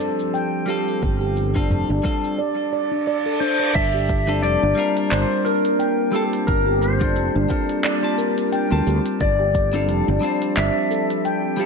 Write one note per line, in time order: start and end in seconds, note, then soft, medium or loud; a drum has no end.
0.00 2.35 F3 medium
0.00 0.64 G3 medium
0.00 0.64 C4 medium
0.00 2.35 C4 medium
0.00 0.65 F4 medium
0.00 2.35 G4 medium
0.00 2.35 A4 medium
0.00 0.18 A4 medium
0.00 0.66 C5 medium
0.00 shaker medium
0.19 shaker soft
0.34 0.52 G5 medium
0.34 shaker soft
0.66 1.50 G3 medium
0.66 1.51 C4 medium
0.66 1.51 F4 medium
0.66 1.19 G4 medium
0.66 1.52 A4 loud
0.66 shaker medium
0.87 shaker soft
1.02 1.71 G1 medium
1.02 kick loud
1.02 shaker soft
1.21 1.35 G4 medium
1.37 shaker medium
1.54 1.87 G3 medium
1.54 1.88 C4 medium
1.54 1.64 D4 medium
1.54 1.88 F4 medium
1.54 1.88 A4 medium
1.54 kick loud
1.54 shaker soft
1.71 1.83 F1 medium
1.71 udu medium
1.71 shaker soft
1.90 1.99 G1 loud
1.90 2.04 D4 loud
2.03 2.38 G3 medium
2.03 2.38 C4 medium
2.03 2.39 F4 medium
2.03 2.39 A4 medium
2.03 kick medium
2.03 shaker medium
2.24 shaker soft
2.38 2.57 D5 medium
2.38 reverse cymbal medium
2.73 2.90 D5 medium
2.92 3.01 D4 medium
3.07 3.25 D5 medium
3.26 3.40 A4 medium
3.40 3.59 D4 loud
3.40 3.76 C5 medium
3.60 3.74 D5 medium
3.75 4.44 G1 medium
3.75 9.17 G3 medium
3.75 9.17 A#3 loud
3.75 9.17 D4 medium
3.75 4.42 E5 loud
3.75 6.45 A5 medium
3.75 kick loud
3.75 open hi-hat soft
3.75 crash loud
3.75 shaker soft
3.94 4.09 G4 medium
4.09 kick loud
4.09 shaker medium
4.27 4.60 G3 medium
4.27 4.60 C4 medium
4.27 4.37 D4 loud
4.27 4.61 F4 medium
4.27 4.61 A4 medium
4.27 open hi-hat medium
4.27 shaker soft
4.42 4.55 F1 medium
4.42 5.13 D5 loud
4.42 open hi-hat soft
4.42 shaker soft
4.62 4.72 G1 loud
4.62 4.77 D4 loud
4.75 6.09 G3 medium
4.75 6.10 C4 medium
4.75 6.10 F4 medium
4.75 6.11 A#4 medium
4.75 shaker medium
4.97 open hi-hat medium
4.97 shaker soft
5.11 5.23 G1 medium
5.11 5.46 C5 medium
5.11 5.30 D5 medium
5.11 clap medium
5.11 open hi-hat soft
5.11 shaker soft
5.45 6.09 A#4 medium
5.45 5.64 A#4 medium
5.45 shaker medium
5.65 open hi-hat medium
5.65 shaker soft
5.79 5.98 G5 medium
5.79 open hi-hat soft
5.79 shaker soft
6.12 6.96 G3 medium
6.12 6.96 C4 medium
6.12 6.97 F4 medium
6.12 6.65 G4 medium
6.12 6.22 A4 medium
6.12 shaker medium
6.16 6.98 A5 loud
6.33 open hi-hat medium
6.33 shaker soft
6.47 7.16 G1 loud
6.47 11.66 G4 medium
6.47 6.83 A#4 loud
6.47 kick loud
6.47 open hi-hat soft
6.47 shaker soft
6.67 6.81 G4 medium
6.82 8.12 C5 medium
6.82 shaker medium
7.00 7.33 G3 medium
7.00 7.33 C4 medium
7.00 7.10 D4 loud
7.00 7.33 F4 medium
7.00 7.34 A4 medium
7.00 kick loud
7.00 open hi-hat medium
7.00 shaker soft
7.16 7.28 F1 medium
7.16 open hi-hat soft
7.16 shaker soft
7.35 7.45 G1 loud
7.35 7.50 D4 loud
7.49 7.98 G3 medium
7.49 7.99 C4 medium
7.49 7.99 F4 medium
7.49 7.99 A4 medium
7.49 kick loud
7.49 shaker medium
7.69 open hi-hat medium
7.69 shaker soft
7.84 8.03 D5 medium
7.84 clap medium
7.84 open hi-hat soft
7.84 shaker soft
8.02 8.66 G3 medium
8.02 8.67 C4 medium
8.02 8.67 F4 medium
8.02 8.68 A5 medium
8.12 8.82 A#4 medium
8.18 8.36 A#4 medium
8.18 shaker medium
8.38 open hi-hat medium
8.38 shaker soft
8.52 8.71 G5 medium
8.52 open hi-hat soft
8.52 shaker soft
8.71 8.81 D2 medium
8.71 9.18 G3 medium
8.71 9.18 C4 medium
8.71 9.19 F4 medium
8.71 9.19 A5 medium
8.86 8.98 D2 medium
8.86 9.21 G4 medium
8.86 shaker medium
9.06 open hi-hat medium
9.06 shaker soft
9.21 9.89 G1 loud
9.21 11.66 F3 medium
9.21 11.66 C4 medium
9.21 10.57 D5 loud
9.21 11.66 A5 medium
9.21 kick loud
9.21 open hi-hat soft
9.21 shaker soft
9.40 9.54 G4 medium
9.55 kick loud
9.55 shaker medium
9.73 10.06 G3 medium
9.73 10.06 C4 medium
9.73 9.82 D4 loud
9.73 10.06 F4 medium
9.73 10.07 A4 loud
9.73 open hi-hat medium
9.73 shaker soft
9.89 10.01 F1 medium
9.89 open hi-hat soft
9.89 shaker soft
10.08 10.17 G1 loud
10.08 10.22 D4 loud
10.21 11.55 G3 medium
10.21 11.55 C4 medium
10.21 11.56 F4 medium
10.21 11.57 C5 medium
10.21 shaker medium
10.42 open hi-hat medium
10.42 shaker soft
10.57 10.69 G1 medium
10.57 10.75 D5 medium
10.57 11.66 E5 medium
10.57 clap medium
10.57 open hi-hat soft
10.57 shaker soft
10.91 11.09 A4 medium
10.91 shaker medium
11.10 open hi-hat medium
11.10 shaker soft
11.25 11.43 G5 medium
11.25 open hi-hat soft
11.25 shaker soft
11.57 11.66 G3 medium
11.57 11.66 C4 medium
11.57 11.66 F4 medium
11.57 11.66 G4 medium
11.57 shaker medium
11.61 11.66 A4 loud